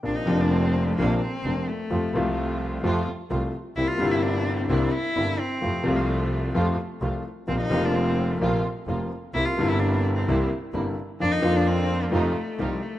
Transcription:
<<
  \new Staff \with { instrumentName = "Cello" } { \time 4/4 \key bes \major \tempo 4 = 129 d'16 ees'8 d'16 c'8. a16 bes8 c'4 a8~ | a8. g16 f4. r4. | e'16 f'8 e'16 d'8. c'16 d'8 e'4 c'8~ | c'8. bes16 a4. r4. |
c'16 ees'8 d'16 c'8. a8 r4. r16 | e'16 f'8 e'16 d'8. c'8 r4. r16 | d'16 ees'8 d'16 c'8. bes16 a4 g8 a8 | }
  \new Staff \with { instrumentName = "String section" } { \time 4/4 \key bes \major <bes c' d'>8 <bes c' d'>4. <bes c' d'>8 r8 <bes c' d'>8 r8 | <a c' f'>8 <a c' f'>4. <a c' f'>8 r8 <a c' f'>8 r8 | <bes c' e'>8 <bes c' e'>4. <bes c' e'>8 r8 <bes c' e'>8 r8 | <a c' f'>8 <a c' f'>4. <a c' f'>8 r8 <a c' f'>8 r8 |
<bes c' f'>8 <bes c' f'>4. <bes c' f'>8 r8 <bes c' f'>8 r8 | <bes c' e'>8 <bes c' e'>4. <bes c' e'>8 r8 <bes c' e'>8 r8 | <bes d' f'>8 <bes d' f'>4. <a ees' f'>8 r8 <a ees' f'>8 r8 | }
  \new Staff \with { instrumentName = "Grand piano" } { \clef bass \time 4/4 \key bes \major <bes,, bes, c f bes d'>8 <f,, f, c f bes d'>4. <bes,, bes, c f bes d'>8 r8 <f,, f, c f bes d'>8 r8 | <f, c f a f'>8 <c, c f a f'>4. <f, c f a f'>8 r8 <c, c f a f'>8 r8 | <c, c g bes e'>8 <g,, g, c g bes e'>4. <c, c g bes e'>8 r8 <g,, g, c g bes e'>8 r8 | <f, c f a f'>8 <c, c f a f'>4. <f, c f a f'>8 r8 <c, c f a f'>8 r8 |
<bes,, bes, c f bes f'>8 <f,, f, c f bes f'>4. <bes,, bes, c f bes f'>8 r8 <f,, f, c f bes f'>8 r8 | <c, c g bes e'>8 <g,, g, c g bes e'>4. <c, c g bes e'>8 r8 <g,, g, c g bes e'>8 r8 | <f, d f bes f'>8 <f, d f bes f'>4. <f, c f a ees'>8 r8 <c, c f a ees'>8 r8 | }
  \new Staff \with { instrumentName = "Double bass" } { \clef bass \time 4/4 \key bes \major bes,,8 f,,4. bes,,8 r8 f,,8 r8 | f,8 c,4. f,8 r8 c,8 r8 | c,8 g,,4. c,8 r8 g,,8 r8 | f,8 c,4. f,8 r8 c,8 r8 |
bes,,8 f,,4. bes,,8 r8 f,,8 r8 | c,8 g,,4. c,8 r8 g,,8 r8 | f,8 f,4. f,8 r8 c,8 r8 | }
>>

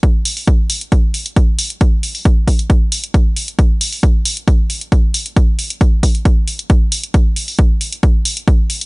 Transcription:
\new DrumStaff \with { instrumentName = "Drums" } \drummode { \time 4/4 \tempo 4 = 135 <hh bd>8 hho16 hho16 <hh bd>8 hho16 hh16 <hh bd>8 hho16 hh16 <hh bd>8 hho16 hh16 | <hh bd>8 hho16 hho16 <hh bd>8 <hho bd>16 hh16 <hh bd>8 hho16 hh16 <hh bd>8 hho16 hh16 | <hh bd>8 hho16 hho16 <hh bd>8 hho16 hh16 <hh bd>8 hho16 hh16 <hh bd>8 hho16 hh16 | <hh bd>8 hho16 hh16 <hh bd>8 <hho bd>16 hh16 <hh bd>8 hho16 hh16 <hh bd>8 hho16 hh16 |
<hh bd>8 hho16 hho16 <hh bd>8 hho16 hh16 <hh bd>8 hho16 hh16 <hh bd>8 hho16 hh16 | }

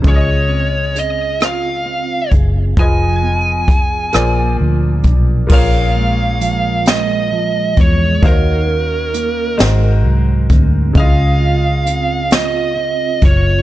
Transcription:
<<
  \new Staff \with { instrumentName = "Lead electric guitar" } { \time 6/8 \key bes \minor \tempo 4. = 44 des''4 ees''8 f''4 r8 | aes''2 r4 | f''4. ees''4 des''8 | bes'4. r4. |
f''4. ees''4 des''8 | }
  \new Staff \with { instrumentName = "Grand piano" } { \time 6/8 \key bes \minor <des aes f' aes' des'' ees''>2. | <f f' aes' ces'' ees''>4. <bes f' aes' c'' d''>4. | <bes f' aes' bes' des''>2. | <ees ees' ges' c'' des'' f''>4. <aes ees' ges' bes' c''>4. |
<des aes e' f' aes' ees''>2. | }
  \new Staff \with { instrumentName = "Clean electric guitar" } { \time 6/8 \key bes \minor <des aes'>8 c'8 aes'8 f'8 c'8 aes'8 | <f aes'>8 ces'8 aes'8 bes,8 f8 d'8 | <bes, des'>8 aes8 f8 aes8 f8 aes8 | <ees ges'>8 des'8 bes8 aes,8 ges8 c'8 |
<des aes'>8 f'8 c'8 f'8 c'8 f'8 | }
  \new Staff \with { instrumentName = "Fingered electric bass" } { \clef bass \time 6/8 \key bes \minor des,2~ des,8 ges,,8 | f,,4. bes,,8 d,8 ces,8 | bes,,2~ bes,,8 e,8 | ees,4. aes,,8 c,8 d,8 |
des,2~ des,8 ges,,8 | }
  \new DrumStaff \with { instrumentName = "Drums" } \drummode { \time 6/8 <hh bd>4 hh8 <hh ss>4 <hh bd>8 | <hh bd>4 <hh bd>8 <hh ss>4 <hh bd>8 | <cymc bd>4 hh8 <hh sn>4 <hh bd>8 | <hh bd>4 hh8 <hh sn>4 <hh bd>8 |
<hh bd>4 hh8 <hh sn>4 <hh bd>8 | }
>>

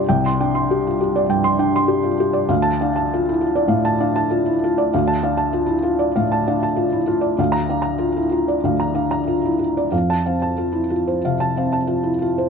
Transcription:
<<
  \new Staff \with { instrumentName = "Felt piano" } { \time 4/4 \key d \minor \tempo 4 = 98 << { r1 | r16 a''8 r2. r16 | r1 | r16 bes''8 r2. r16 |
r16 a''8 r2. r16 | } \\ { <d'' g''>16 c'''16 g''16 c'''16 g'16 f'16 g'16 d''16 g''16 c'''16 g''16 c'''16 g'16 f'16 g'16 d''16 | f''8 f''16 a''16 f'16 e'16 f'16 d''16 f''16 a''16 f''16 a''16 f'16 e'16 f'16 d''16 | f''16 a''16 f''16 a''16 f'16 e'16 f'16 d''16 f''16 a''16 f''16 a''16 f'16 e'16 f'16 d''16 | f''8 f''16 bes''16 f'16 e'16 f'16 d''16 f''16 bes''16 f''16 bes''16 f'16 e'16 f'16 d''16 |
f''8 f''16 a''16 f'16 e'16 f'16 c''16 f''16 a''16 f''16 a''16 f'16 e'16 f'16 c''16 | } >> }
  \new Staff \with { instrumentName = "Felt piano" } { \clef bass \time 4/4 \key d \minor c,8 d'4 r8 g,8 d'4 r8 | d,8 d'4 r8 a,8 d'4 r8 | d,8 d'4 r8 a,8 d'4 r8 | d,8 d'4 r8 d,8 d'4 r8 |
f,8 c'4 r8 c8 c'4 r8 | }
>>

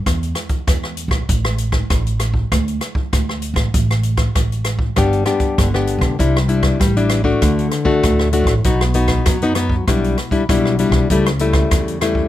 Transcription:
<<
  \new Staff \with { instrumentName = "Nylon-string guitar" } { \time 4/4 \key d \mixolydian \tempo 4 = 98 << { r1 | r1 | <b d' g'>8 <b d' g'>8. <b d' g'>8. <g d' e'>16 r16 <g d' e'>8 r16 <g d' e'>8 <a d' fis'>16~ | <a d' fis'>8 r16 <a d' fis'>8. <a d' fis'>16 r16 <b dis' fis'>16 r16 <b dis' fis'>8. <b dis' fis'>16 <b dis' fis'>16 r16 |
<g d' e'>8 r16 <g d' e'>16 <g d' e'>8 <g d' e'>8 <g a e'>16 r16 <g a e'>4 <g a e'>8 | } \\ { r1 | r1 | g4 d4 c4 g4 | d4 a,4 b,4 fis4 |
b,4 b,4 cis4 cis4 | } >> }
  \new Staff \with { instrumentName = "Upright bass" } { \clef bass \time 4/4 \key d \mixolydian e,8 r8 e,8. bes,,16 a,,4 a,,4 | d,8 r8 d,8. a,,16 a,,4 a,,4 | g,,8 r8 g,,8. b,,16 c,4 a,,4 | d,8 r8 d,8. a,,16 b,,4 fis,4 |
b,,8 r8 b,,8. b,,16 cis,4 e,4 | }
  \new DrumStaff \with { instrumentName = "Drums" } \drummode { \time 4/4 <hh bd ss>16 hh16 <hh ss>16 <hh bd>16 <hh bd ss>16 ss16 hh16 <hh bd ss>16 <hh bd>16 <hh ss>16 hh16 <hh bd ss>16 <hh bd ss>16 hh16 <hh ss>16 bd16 | <hh bd ss>16 hh16 <hh ss>16 bd16 <hh bd ss>16 ss16 hh16 <hh bd ss>16 <hh bd>16 <hh ss>16 hh16 <hh bd ss>16 <hh bd ss>16 hh16 <hh ss>16 bd16 | <hh bd ss>16 hh16 <hh ss>16 <hh bd>16 <hh bd ss>16 ss16 hh16 <hh bd ss>16 <hh bd>16 <hh ss>16 hh16 <hh bd ss>16 <hh bd ss>16 hh16 <hh ss>16 bd16 | <hh bd ss>16 hh16 <hh ss>16 bd16 <hh bd ss>16 ss16 hh16 <hh bd ss>16 <hh bd>16 <hh ss>16 hh16 <hh bd ss>16 <hh bd ss>16 hh16 <hh ss>16 bd16 |
<hh bd ss>16 hh16 <hh ss>16 <hh bd>16 <hh bd ss>16 ss16 hh16 <hh bd ss>16 <hh bd>16 <hh ss>16 hh16 <hh bd ss>16 <hh bd ss>16 hh16 <hh ss>16 bd16 | }
>>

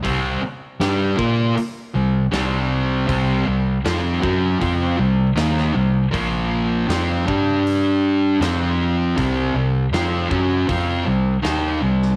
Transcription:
<<
  \new Staff \with { instrumentName = "Distorted electric guitar" } { \clef bass \time 4/4 \key g \dorian \tempo 4 = 79 <c g c'>8 r8 <g d' g'>8 <bes f' bes'>8 r8 <c g>8 <c g c'>4 | <c g c'>8 <c g>8 <f c' f'>8 <fis des' fis'>8 <f c' f'>8 <c g>8 <ees bes ees'>8 <c g>8 | <bes, f bes>4 <f c' f'>8 <g d' g'>4. <f c' f'>4 | <c g c'>8 <c g>8 <f c' f'>8 <fis des' fis'>8 <f c' f'>8 <c g>8 <ees bes ees'>8 <c g>8 | }
  \new Staff \with { instrumentName = "Fingered electric bass" } { \clef bass \time 4/4 \key g \dorian c,8 r8 g,8 bes,8 r8 c,8 c,4 | c,8 c,8 f,8 fis,8 f,8 c,8 ees,8 c,8 | bes,,4 f,8 g,4. f,4 | c,8 c,8 f,8 fis,8 f,8 c,8 ees,8 c,8 | }
  \new DrumStaff \with { instrumentName = "Drums" } \drummode { \time 4/4 <hho bd>4 <hho sn>8 bd8 hho4 <hho sn>4 | <hho bd>4 <hho sn>8 bd8 <hho bd>4 <hho sn>16 sn8. | <hho bd>4 <hho sn>8 bd8 hho4 <hho sn>4 | <hho bd>4 <hho sn>8 bd8 <hho bd>4 <hho sn>8. sn16 | }
>>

